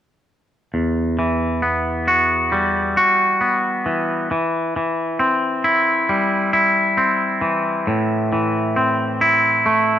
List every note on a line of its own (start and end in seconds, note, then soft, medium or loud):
0.74 2.97 E2 soft
1.19 3.85 E3 soft
1.62 3.40 B3 soft
2.08 2.96 F#4 soft
2.52 4.31 G3 soft
2.97 4.31 F#4 soft
3.41 4.31 B3 soft
3.86 4.31 E3 soft
4.31 4.76 E3 soft
4.76 7.41 E3 soft
5.19 6.97 C4 soft
5.64 6.53 E4 soft
6.09 7.88 G3 soft
6.53 9.21 E4 soft
6.97 8.76 C4 soft
7.41 8.32 E3 soft
7.87 9.99 A2 soft
8.33 9.99 E3 soft
8.76 9.99 C4 soft
9.21 9.99 E4 soft
9.66 9.99 A3 soft